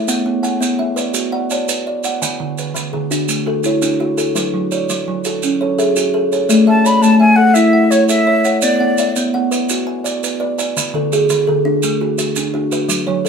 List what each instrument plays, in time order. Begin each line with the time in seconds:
Already playing: kalimba C#5 E5
0.08 kalimba B3 F#5, maracas
0.26 kalimba B3
0.43 kalimba F#5 G#5, maracas
0.60 kalimba B3, maracas
0.79 kalimba B3 E5
0.96 kalimba B4 D5, maracas
1.14 kalimba F#4, maracas
1.32 kalimba D5 F#5
1.50 kalimba C#5 D5 A5, maracas
1.68 kalimba B4, maracas
1.87 kalimba D5
2.04 kalimba D5 F#5, maracas
2.22 kalimba D3 G#5, maracas
2.40 kalimba D3
2.58 kalimba B4, maracas
2.74 kalimba D3, maracas
2.93 kalimba D3 G#4
3.11 kalimba D4 F#4, maracas
3.28 kalimba A3, maracas
3.46 kalimba F#4 A4
3.64 kalimba E4 F#4 C#5, maracas
3.82 kalimba D4, maracas
4.00 kalimba F#4
4.17 kalimba F#4 A4, maracas
4.35 kalimba F#3 B4, maracas
4.54 kalimba F#3
4.71 kalimba C#5 D5, maracas
4.89 kalimba F#3, maracas
5.08 kalimba F#3
5.25 kalimba F#4 A4, maracas
5.43 kalimba C#4, maracas
5.61 kalimba A4 C#5
5.78 kalimba G#4 A4 E5, maracas
5.96 kalimba F#4, maracas
6.14 kalimba A4
6.32 kalimba A4 C#5, maracas
6.49 kalimba A3 D5, maracas
6.67 kalimba A3 E5, flute A5
6.85 kalimba C#5 D5, flute B5, maracas
7.02 kalimba A3, flute A5, maracas
7.20 kalimba A3 E5, flute G#5
7.36 kalimba A4, flute F#5
7.54 kalimba E4, flute E5, maracas
7.73 kalimba F#5
7.91 flute C#5, kalimba C#5, maracas
8.08 kalimba A4, flute E5, maracas
8.27 kalimba C#5
8.45 kalimba C#5 F#5, maracas
8.62 kalimba B3, flute D5, maracas
8.80 kalimba B3 F#5
8.98 kalimba D5 E5, maracas
9.16 kalimba B3, maracas
9.34 kalimba B3 F#5
9.51 kalimba B4, maracas
9.69 kalimba F#4, maracas
9.87 kalimba G#5
10.04 kalimba D5, maracas
10.24 kalimba B4, maracas
10.40 kalimba B4 D5
10.58 kalimba D5 G#5, maracas
10.77 kalimba D3, maracas
10.94 kalimba D3 A4
11.12 kalimba F#4 G#4, maracas
11.30 kalimba D3, maracas
11.47 kalimba D3 A4
11.65 kalimba D4
11.83 kalimba A3, maracas
12.01 kalimba F#4
12.18 kalimba F#4, maracas
12.36 kalimba D4, maracas
12.54 kalimba D4 F#4
12.72 kalimba F#4 B4, maracas
12.89 kalimba F#3, maracas
13.07 kalimba F#3 C#5
13.25 kalimba A4 B4